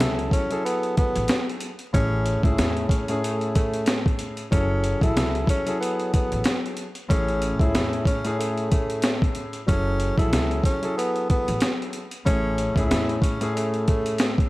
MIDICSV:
0, 0, Header, 1, 5, 480
1, 0, Start_track
1, 0, Key_signature, 3, "minor"
1, 0, Tempo, 645161
1, 1443, Time_signature, 4, 2, 24, 8
1, 10782, End_track
2, 0, Start_track
2, 0, Title_t, "Grand piano"
2, 0, Program_c, 0, 0
2, 0, Note_on_c, 0, 54, 86
2, 0, Note_on_c, 0, 64, 87
2, 0, Note_on_c, 0, 68, 88
2, 0, Note_on_c, 0, 69, 102
2, 331, Note_off_c, 0, 54, 0
2, 334, Note_off_c, 0, 64, 0
2, 337, Note_off_c, 0, 68, 0
2, 340, Note_off_c, 0, 69, 0
2, 371, Note_on_c, 0, 54, 84
2, 377, Note_on_c, 0, 64, 75
2, 384, Note_on_c, 0, 68, 85
2, 391, Note_on_c, 0, 69, 100
2, 1248, Note_off_c, 0, 54, 0
2, 1251, Note_off_c, 0, 64, 0
2, 1255, Note_off_c, 0, 68, 0
2, 1258, Note_off_c, 0, 69, 0
2, 1435, Note_on_c, 0, 45, 88
2, 1441, Note_on_c, 0, 57, 82
2, 1448, Note_on_c, 0, 61, 79
2, 1454, Note_on_c, 0, 68, 98
2, 1783, Note_off_c, 0, 45, 0
2, 1786, Note_off_c, 0, 57, 0
2, 1789, Note_off_c, 0, 61, 0
2, 1792, Note_off_c, 0, 68, 0
2, 1810, Note_on_c, 0, 45, 86
2, 1816, Note_on_c, 0, 57, 80
2, 1823, Note_on_c, 0, 61, 89
2, 1829, Note_on_c, 0, 68, 101
2, 2251, Note_off_c, 0, 45, 0
2, 2254, Note_off_c, 0, 57, 0
2, 2258, Note_off_c, 0, 61, 0
2, 2261, Note_off_c, 0, 68, 0
2, 2293, Note_on_c, 0, 45, 84
2, 2299, Note_on_c, 0, 57, 79
2, 2305, Note_on_c, 0, 61, 83
2, 2312, Note_on_c, 0, 68, 105
2, 3285, Note_off_c, 0, 45, 0
2, 3289, Note_off_c, 0, 57, 0
2, 3291, Note_off_c, 0, 61, 0
2, 3295, Note_off_c, 0, 68, 0
2, 3354, Note_on_c, 0, 54, 92
2, 3361, Note_on_c, 0, 64, 78
2, 3367, Note_on_c, 0, 68, 85
2, 3374, Note_on_c, 0, 69, 98
2, 3702, Note_off_c, 0, 54, 0
2, 3706, Note_off_c, 0, 64, 0
2, 3709, Note_off_c, 0, 68, 0
2, 3712, Note_off_c, 0, 69, 0
2, 3727, Note_on_c, 0, 54, 89
2, 3734, Note_on_c, 0, 64, 81
2, 3741, Note_on_c, 0, 68, 83
2, 3746, Note_on_c, 0, 69, 98
2, 4170, Note_off_c, 0, 54, 0
2, 4173, Note_off_c, 0, 64, 0
2, 4177, Note_off_c, 0, 68, 0
2, 4179, Note_off_c, 0, 69, 0
2, 4211, Note_on_c, 0, 54, 89
2, 4216, Note_on_c, 0, 64, 79
2, 4223, Note_on_c, 0, 68, 90
2, 4230, Note_on_c, 0, 69, 99
2, 5088, Note_off_c, 0, 54, 0
2, 5091, Note_off_c, 0, 64, 0
2, 5094, Note_off_c, 0, 68, 0
2, 5098, Note_off_c, 0, 69, 0
2, 5272, Note_on_c, 0, 45, 89
2, 5279, Note_on_c, 0, 57, 83
2, 5285, Note_on_c, 0, 61, 81
2, 5292, Note_on_c, 0, 68, 98
2, 5621, Note_off_c, 0, 45, 0
2, 5625, Note_off_c, 0, 57, 0
2, 5628, Note_off_c, 0, 61, 0
2, 5631, Note_off_c, 0, 68, 0
2, 5647, Note_on_c, 0, 45, 88
2, 5653, Note_on_c, 0, 57, 78
2, 5659, Note_on_c, 0, 61, 85
2, 5666, Note_on_c, 0, 68, 96
2, 6089, Note_off_c, 0, 45, 0
2, 6093, Note_off_c, 0, 57, 0
2, 6096, Note_off_c, 0, 61, 0
2, 6099, Note_off_c, 0, 68, 0
2, 6130, Note_on_c, 0, 45, 86
2, 6136, Note_on_c, 0, 57, 82
2, 6143, Note_on_c, 0, 61, 81
2, 6150, Note_on_c, 0, 68, 110
2, 7124, Note_off_c, 0, 45, 0
2, 7127, Note_off_c, 0, 57, 0
2, 7130, Note_off_c, 0, 61, 0
2, 7134, Note_off_c, 0, 68, 0
2, 7192, Note_on_c, 0, 54, 88
2, 7199, Note_on_c, 0, 64, 79
2, 7205, Note_on_c, 0, 68, 84
2, 7211, Note_on_c, 0, 69, 91
2, 7541, Note_off_c, 0, 54, 0
2, 7545, Note_off_c, 0, 64, 0
2, 7548, Note_off_c, 0, 68, 0
2, 7551, Note_off_c, 0, 69, 0
2, 7568, Note_on_c, 0, 54, 87
2, 7574, Note_on_c, 0, 64, 83
2, 7580, Note_on_c, 0, 68, 86
2, 7587, Note_on_c, 0, 69, 101
2, 8010, Note_off_c, 0, 54, 0
2, 8013, Note_off_c, 0, 64, 0
2, 8016, Note_off_c, 0, 68, 0
2, 8020, Note_off_c, 0, 69, 0
2, 8050, Note_on_c, 0, 54, 86
2, 8057, Note_on_c, 0, 64, 80
2, 8063, Note_on_c, 0, 68, 84
2, 8070, Note_on_c, 0, 69, 95
2, 8928, Note_off_c, 0, 54, 0
2, 8931, Note_off_c, 0, 64, 0
2, 8934, Note_off_c, 0, 68, 0
2, 8937, Note_off_c, 0, 69, 0
2, 9114, Note_on_c, 0, 45, 86
2, 9120, Note_on_c, 0, 57, 85
2, 9127, Note_on_c, 0, 61, 79
2, 9133, Note_on_c, 0, 68, 102
2, 9462, Note_off_c, 0, 45, 0
2, 9466, Note_off_c, 0, 57, 0
2, 9469, Note_off_c, 0, 61, 0
2, 9472, Note_off_c, 0, 68, 0
2, 9489, Note_on_c, 0, 45, 92
2, 9495, Note_on_c, 0, 57, 83
2, 9502, Note_on_c, 0, 61, 86
2, 9508, Note_on_c, 0, 68, 102
2, 9931, Note_off_c, 0, 45, 0
2, 9934, Note_off_c, 0, 57, 0
2, 9937, Note_off_c, 0, 61, 0
2, 9940, Note_off_c, 0, 68, 0
2, 9972, Note_on_c, 0, 45, 88
2, 9979, Note_on_c, 0, 57, 79
2, 9985, Note_on_c, 0, 61, 79
2, 9991, Note_on_c, 0, 68, 109
2, 10782, Note_off_c, 0, 45, 0
2, 10782, Note_off_c, 0, 57, 0
2, 10782, Note_off_c, 0, 61, 0
2, 10782, Note_off_c, 0, 68, 0
2, 10782, End_track
3, 0, Start_track
3, 0, Title_t, "Tenor saxophone"
3, 0, Program_c, 1, 66
3, 0, Note_on_c, 1, 64, 80
3, 221, Note_off_c, 1, 64, 0
3, 242, Note_on_c, 1, 61, 81
3, 459, Note_off_c, 1, 61, 0
3, 483, Note_on_c, 1, 59, 88
3, 699, Note_off_c, 1, 59, 0
3, 725, Note_on_c, 1, 59, 83
3, 1078, Note_off_c, 1, 59, 0
3, 1443, Note_on_c, 1, 61, 106
3, 1797, Note_off_c, 1, 61, 0
3, 1816, Note_on_c, 1, 64, 79
3, 2141, Note_off_c, 1, 64, 0
3, 2151, Note_on_c, 1, 61, 72
3, 2373, Note_off_c, 1, 61, 0
3, 2405, Note_on_c, 1, 57, 68
3, 2620, Note_off_c, 1, 57, 0
3, 2642, Note_on_c, 1, 57, 86
3, 2996, Note_off_c, 1, 57, 0
3, 3358, Note_on_c, 1, 61, 99
3, 3715, Note_off_c, 1, 61, 0
3, 3742, Note_on_c, 1, 64, 79
3, 4064, Note_off_c, 1, 64, 0
3, 4090, Note_on_c, 1, 61, 86
3, 4303, Note_off_c, 1, 61, 0
3, 4317, Note_on_c, 1, 59, 80
3, 4536, Note_off_c, 1, 59, 0
3, 4562, Note_on_c, 1, 59, 81
3, 4916, Note_off_c, 1, 59, 0
3, 5280, Note_on_c, 1, 61, 101
3, 5635, Note_off_c, 1, 61, 0
3, 5658, Note_on_c, 1, 64, 78
3, 5982, Note_off_c, 1, 64, 0
3, 6000, Note_on_c, 1, 61, 80
3, 6218, Note_off_c, 1, 61, 0
3, 6239, Note_on_c, 1, 57, 73
3, 6457, Note_off_c, 1, 57, 0
3, 6479, Note_on_c, 1, 57, 79
3, 6835, Note_off_c, 1, 57, 0
3, 7202, Note_on_c, 1, 61, 103
3, 7556, Note_off_c, 1, 61, 0
3, 7577, Note_on_c, 1, 64, 81
3, 7901, Note_off_c, 1, 64, 0
3, 7923, Note_on_c, 1, 61, 82
3, 8139, Note_off_c, 1, 61, 0
3, 8165, Note_on_c, 1, 59, 84
3, 8380, Note_off_c, 1, 59, 0
3, 8406, Note_on_c, 1, 59, 83
3, 8758, Note_off_c, 1, 59, 0
3, 9122, Note_on_c, 1, 61, 109
3, 9477, Note_off_c, 1, 61, 0
3, 9497, Note_on_c, 1, 64, 79
3, 9821, Note_off_c, 1, 64, 0
3, 9832, Note_on_c, 1, 61, 71
3, 10053, Note_off_c, 1, 61, 0
3, 10085, Note_on_c, 1, 57, 71
3, 10300, Note_off_c, 1, 57, 0
3, 10324, Note_on_c, 1, 57, 86
3, 10678, Note_off_c, 1, 57, 0
3, 10782, End_track
4, 0, Start_track
4, 0, Title_t, "Upright bass"
4, 0, Program_c, 2, 32
4, 6, Note_on_c, 2, 37, 96
4, 198, Note_off_c, 2, 37, 0
4, 862, Note_on_c, 2, 33, 94
4, 944, Note_off_c, 2, 33, 0
4, 1445, Note_on_c, 2, 33, 106
4, 1747, Note_off_c, 2, 33, 0
4, 1813, Note_on_c, 2, 37, 87
4, 1899, Note_off_c, 2, 37, 0
4, 1925, Note_on_c, 2, 40, 89
4, 2118, Note_off_c, 2, 40, 0
4, 3366, Note_on_c, 2, 30, 106
4, 3668, Note_off_c, 2, 30, 0
4, 3733, Note_on_c, 2, 33, 94
4, 3849, Note_off_c, 2, 33, 0
4, 3849, Note_on_c, 2, 37, 93
4, 4040, Note_off_c, 2, 37, 0
4, 4703, Note_on_c, 2, 33, 93
4, 4785, Note_off_c, 2, 33, 0
4, 5286, Note_on_c, 2, 33, 104
4, 5588, Note_off_c, 2, 33, 0
4, 5653, Note_on_c, 2, 37, 83
4, 5739, Note_off_c, 2, 37, 0
4, 5767, Note_on_c, 2, 40, 86
4, 5959, Note_off_c, 2, 40, 0
4, 7205, Note_on_c, 2, 30, 103
4, 7507, Note_off_c, 2, 30, 0
4, 7573, Note_on_c, 2, 33, 95
4, 7686, Note_off_c, 2, 33, 0
4, 7686, Note_on_c, 2, 37, 94
4, 7878, Note_off_c, 2, 37, 0
4, 8544, Note_on_c, 2, 33, 91
4, 8626, Note_off_c, 2, 33, 0
4, 9127, Note_on_c, 2, 33, 107
4, 9428, Note_off_c, 2, 33, 0
4, 9494, Note_on_c, 2, 37, 85
4, 9580, Note_off_c, 2, 37, 0
4, 9607, Note_on_c, 2, 40, 88
4, 9799, Note_off_c, 2, 40, 0
4, 10782, End_track
5, 0, Start_track
5, 0, Title_t, "Drums"
5, 2, Note_on_c, 9, 42, 95
5, 5, Note_on_c, 9, 38, 115
5, 77, Note_off_c, 9, 42, 0
5, 79, Note_off_c, 9, 38, 0
5, 140, Note_on_c, 9, 42, 36
5, 215, Note_off_c, 9, 42, 0
5, 233, Note_on_c, 9, 36, 89
5, 247, Note_on_c, 9, 42, 87
5, 307, Note_off_c, 9, 36, 0
5, 321, Note_off_c, 9, 42, 0
5, 376, Note_on_c, 9, 42, 60
5, 451, Note_off_c, 9, 42, 0
5, 493, Note_on_c, 9, 42, 87
5, 568, Note_off_c, 9, 42, 0
5, 620, Note_on_c, 9, 42, 36
5, 694, Note_off_c, 9, 42, 0
5, 724, Note_on_c, 9, 42, 72
5, 727, Note_on_c, 9, 36, 96
5, 798, Note_off_c, 9, 42, 0
5, 801, Note_off_c, 9, 36, 0
5, 860, Note_on_c, 9, 42, 61
5, 934, Note_off_c, 9, 42, 0
5, 952, Note_on_c, 9, 42, 96
5, 963, Note_on_c, 9, 38, 112
5, 1027, Note_off_c, 9, 42, 0
5, 1037, Note_off_c, 9, 38, 0
5, 1112, Note_on_c, 9, 42, 37
5, 1187, Note_off_c, 9, 42, 0
5, 1194, Note_on_c, 9, 42, 77
5, 1269, Note_off_c, 9, 42, 0
5, 1331, Note_on_c, 9, 42, 51
5, 1405, Note_off_c, 9, 42, 0
5, 1443, Note_on_c, 9, 36, 107
5, 1446, Note_on_c, 9, 42, 91
5, 1517, Note_off_c, 9, 36, 0
5, 1521, Note_off_c, 9, 42, 0
5, 1678, Note_on_c, 9, 42, 69
5, 1753, Note_off_c, 9, 42, 0
5, 1811, Note_on_c, 9, 36, 92
5, 1823, Note_on_c, 9, 42, 48
5, 1885, Note_off_c, 9, 36, 0
5, 1898, Note_off_c, 9, 42, 0
5, 1923, Note_on_c, 9, 42, 95
5, 1925, Note_on_c, 9, 38, 113
5, 1997, Note_off_c, 9, 42, 0
5, 2000, Note_off_c, 9, 38, 0
5, 2058, Note_on_c, 9, 42, 36
5, 2132, Note_off_c, 9, 42, 0
5, 2152, Note_on_c, 9, 36, 94
5, 2165, Note_on_c, 9, 42, 85
5, 2226, Note_off_c, 9, 36, 0
5, 2240, Note_off_c, 9, 42, 0
5, 2294, Note_on_c, 9, 42, 59
5, 2369, Note_off_c, 9, 42, 0
5, 2413, Note_on_c, 9, 42, 91
5, 2487, Note_off_c, 9, 42, 0
5, 2539, Note_on_c, 9, 42, 37
5, 2614, Note_off_c, 9, 42, 0
5, 2644, Note_on_c, 9, 42, 75
5, 2646, Note_on_c, 9, 36, 96
5, 2719, Note_off_c, 9, 42, 0
5, 2721, Note_off_c, 9, 36, 0
5, 2779, Note_on_c, 9, 42, 61
5, 2854, Note_off_c, 9, 42, 0
5, 2873, Note_on_c, 9, 42, 96
5, 2883, Note_on_c, 9, 38, 109
5, 2948, Note_off_c, 9, 42, 0
5, 2958, Note_off_c, 9, 38, 0
5, 3019, Note_on_c, 9, 36, 98
5, 3033, Note_on_c, 9, 42, 36
5, 3094, Note_off_c, 9, 36, 0
5, 3107, Note_off_c, 9, 42, 0
5, 3116, Note_on_c, 9, 42, 77
5, 3190, Note_off_c, 9, 42, 0
5, 3252, Note_on_c, 9, 42, 50
5, 3326, Note_off_c, 9, 42, 0
5, 3363, Note_on_c, 9, 36, 112
5, 3367, Note_on_c, 9, 42, 90
5, 3438, Note_off_c, 9, 36, 0
5, 3442, Note_off_c, 9, 42, 0
5, 3599, Note_on_c, 9, 42, 68
5, 3673, Note_off_c, 9, 42, 0
5, 3731, Note_on_c, 9, 36, 92
5, 3743, Note_on_c, 9, 42, 49
5, 3805, Note_off_c, 9, 36, 0
5, 3817, Note_off_c, 9, 42, 0
5, 3844, Note_on_c, 9, 42, 93
5, 3847, Note_on_c, 9, 38, 114
5, 3919, Note_off_c, 9, 42, 0
5, 3921, Note_off_c, 9, 38, 0
5, 3981, Note_on_c, 9, 42, 36
5, 4056, Note_off_c, 9, 42, 0
5, 4073, Note_on_c, 9, 36, 90
5, 4086, Note_on_c, 9, 42, 89
5, 4147, Note_off_c, 9, 36, 0
5, 4160, Note_off_c, 9, 42, 0
5, 4216, Note_on_c, 9, 42, 60
5, 4290, Note_off_c, 9, 42, 0
5, 4334, Note_on_c, 9, 42, 88
5, 4409, Note_off_c, 9, 42, 0
5, 4461, Note_on_c, 9, 42, 37
5, 4535, Note_off_c, 9, 42, 0
5, 4565, Note_on_c, 9, 42, 74
5, 4567, Note_on_c, 9, 36, 95
5, 4640, Note_off_c, 9, 42, 0
5, 4641, Note_off_c, 9, 36, 0
5, 4701, Note_on_c, 9, 42, 59
5, 4775, Note_off_c, 9, 42, 0
5, 4792, Note_on_c, 9, 42, 95
5, 4803, Note_on_c, 9, 38, 114
5, 4867, Note_off_c, 9, 42, 0
5, 4877, Note_off_c, 9, 38, 0
5, 4953, Note_on_c, 9, 42, 36
5, 5028, Note_off_c, 9, 42, 0
5, 5035, Note_on_c, 9, 42, 79
5, 5109, Note_off_c, 9, 42, 0
5, 5172, Note_on_c, 9, 42, 49
5, 5246, Note_off_c, 9, 42, 0
5, 5283, Note_on_c, 9, 36, 107
5, 5287, Note_on_c, 9, 42, 89
5, 5358, Note_off_c, 9, 36, 0
5, 5362, Note_off_c, 9, 42, 0
5, 5420, Note_on_c, 9, 42, 34
5, 5494, Note_off_c, 9, 42, 0
5, 5519, Note_on_c, 9, 42, 69
5, 5593, Note_off_c, 9, 42, 0
5, 5650, Note_on_c, 9, 36, 92
5, 5662, Note_on_c, 9, 42, 48
5, 5725, Note_off_c, 9, 36, 0
5, 5737, Note_off_c, 9, 42, 0
5, 5763, Note_on_c, 9, 42, 90
5, 5766, Note_on_c, 9, 38, 116
5, 5838, Note_off_c, 9, 42, 0
5, 5840, Note_off_c, 9, 38, 0
5, 5901, Note_on_c, 9, 42, 35
5, 5975, Note_off_c, 9, 42, 0
5, 5992, Note_on_c, 9, 36, 93
5, 6005, Note_on_c, 9, 42, 85
5, 6067, Note_off_c, 9, 36, 0
5, 6079, Note_off_c, 9, 42, 0
5, 6135, Note_on_c, 9, 42, 59
5, 6209, Note_off_c, 9, 42, 0
5, 6254, Note_on_c, 9, 42, 88
5, 6328, Note_off_c, 9, 42, 0
5, 6380, Note_on_c, 9, 42, 37
5, 6455, Note_off_c, 9, 42, 0
5, 6485, Note_on_c, 9, 42, 72
5, 6487, Note_on_c, 9, 36, 96
5, 6559, Note_off_c, 9, 42, 0
5, 6561, Note_off_c, 9, 36, 0
5, 6620, Note_on_c, 9, 42, 62
5, 6695, Note_off_c, 9, 42, 0
5, 6713, Note_on_c, 9, 42, 99
5, 6723, Note_on_c, 9, 38, 109
5, 6787, Note_off_c, 9, 42, 0
5, 6797, Note_off_c, 9, 38, 0
5, 6859, Note_on_c, 9, 36, 98
5, 6873, Note_on_c, 9, 42, 35
5, 6934, Note_off_c, 9, 36, 0
5, 6947, Note_off_c, 9, 42, 0
5, 6955, Note_on_c, 9, 42, 77
5, 7029, Note_off_c, 9, 42, 0
5, 7092, Note_on_c, 9, 42, 50
5, 7166, Note_off_c, 9, 42, 0
5, 7203, Note_on_c, 9, 36, 108
5, 7207, Note_on_c, 9, 42, 90
5, 7277, Note_off_c, 9, 36, 0
5, 7281, Note_off_c, 9, 42, 0
5, 7437, Note_on_c, 9, 42, 68
5, 7512, Note_off_c, 9, 42, 0
5, 7571, Note_on_c, 9, 36, 94
5, 7584, Note_on_c, 9, 42, 47
5, 7645, Note_off_c, 9, 36, 0
5, 7658, Note_off_c, 9, 42, 0
5, 7684, Note_on_c, 9, 42, 93
5, 7686, Note_on_c, 9, 38, 112
5, 7758, Note_off_c, 9, 42, 0
5, 7761, Note_off_c, 9, 38, 0
5, 7821, Note_on_c, 9, 42, 35
5, 7895, Note_off_c, 9, 42, 0
5, 7913, Note_on_c, 9, 36, 90
5, 7926, Note_on_c, 9, 42, 88
5, 7988, Note_off_c, 9, 36, 0
5, 8000, Note_off_c, 9, 42, 0
5, 8056, Note_on_c, 9, 42, 58
5, 8130, Note_off_c, 9, 42, 0
5, 8176, Note_on_c, 9, 42, 90
5, 8250, Note_off_c, 9, 42, 0
5, 8300, Note_on_c, 9, 42, 36
5, 8375, Note_off_c, 9, 42, 0
5, 8405, Note_on_c, 9, 42, 72
5, 8407, Note_on_c, 9, 36, 92
5, 8480, Note_off_c, 9, 42, 0
5, 8482, Note_off_c, 9, 36, 0
5, 8541, Note_on_c, 9, 42, 61
5, 8615, Note_off_c, 9, 42, 0
5, 8634, Note_on_c, 9, 42, 97
5, 8644, Note_on_c, 9, 38, 112
5, 8708, Note_off_c, 9, 42, 0
5, 8718, Note_off_c, 9, 38, 0
5, 8795, Note_on_c, 9, 42, 34
5, 8869, Note_off_c, 9, 42, 0
5, 8876, Note_on_c, 9, 42, 77
5, 8951, Note_off_c, 9, 42, 0
5, 9013, Note_on_c, 9, 42, 52
5, 9087, Note_off_c, 9, 42, 0
5, 9124, Note_on_c, 9, 36, 110
5, 9127, Note_on_c, 9, 42, 93
5, 9198, Note_off_c, 9, 36, 0
5, 9202, Note_off_c, 9, 42, 0
5, 9361, Note_on_c, 9, 42, 68
5, 9435, Note_off_c, 9, 42, 0
5, 9492, Note_on_c, 9, 36, 97
5, 9505, Note_on_c, 9, 42, 49
5, 9566, Note_off_c, 9, 36, 0
5, 9579, Note_off_c, 9, 42, 0
5, 9605, Note_on_c, 9, 42, 91
5, 9607, Note_on_c, 9, 38, 119
5, 9679, Note_off_c, 9, 42, 0
5, 9682, Note_off_c, 9, 38, 0
5, 9742, Note_on_c, 9, 42, 35
5, 9816, Note_off_c, 9, 42, 0
5, 9834, Note_on_c, 9, 36, 93
5, 9847, Note_on_c, 9, 42, 86
5, 9908, Note_off_c, 9, 36, 0
5, 9921, Note_off_c, 9, 42, 0
5, 9977, Note_on_c, 9, 42, 60
5, 10051, Note_off_c, 9, 42, 0
5, 10095, Note_on_c, 9, 42, 88
5, 10170, Note_off_c, 9, 42, 0
5, 10220, Note_on_c, 9, 42, 36
5, 10295, Note_off_c, 9, 42, 0
5, 10325, Note_on_c, 9, 42, 74
5, 10327, Note_on_c, 9, 36, 95
5, 10399, Note_off_c, 9, 42, 0
5, 10402, Note_off_c, 9, 36, 0
5, 10460, Note_on_c, 9, 42, 59
5, 10534, Note_off_c, 9, 42, 0
5, 10553, Note_on_c, 9, 42, 96
5, 10564, Note_on_c, 9, 38, 112
5, 10628, Note_off_c, 9, 42, 0
5, 10638, Note_off_c, 9, 38, 0
5, 10701, Note_on_c, 9, 36, 99
5, 10715, Note_on_c, 9, 42, 36
5, 10775, Note_off_c, 9, 36, 0
5, 10782, Note_off_c, 9, 42, 0
5, 10782, End_track
0, 0, End_of_file